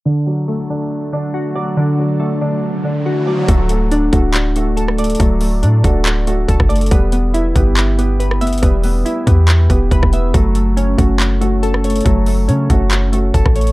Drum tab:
HH |--------------------------------|--------------------------------|x---x---x---x---x---x---x---xxxx|x---o---x---x---x---x---x---xxxx|
CP |--------------------------------|--------------------------------|----------------x---------------|----------------x---------------|
SD |--------------------------------|--------------------------------|--------------------------r-----|--------------------------r-----|
BD |--------------------------------|--------------------------------|o-----------o-------------------|o-----------o-----------o-o-----|

HH |x---x---x---x---x---x---x---xxxx|x---o---x---x---x---x---x---x---|x---x---x---x---x---x---x---xxxx|x---o---x---x---x---x---x---xxx-|
CP |----------------x---------------|----------------x---------------|----------------x---------------|----------------x---------------|
SD |--------------------------r-----|--------------------------r-----|--------------------------r-----|--------------------------r-----|
BD |o-----------o-------------------|o-----------o-------o---o-o-----|o-----------o-------------------|o-----------o-----------o-o-----|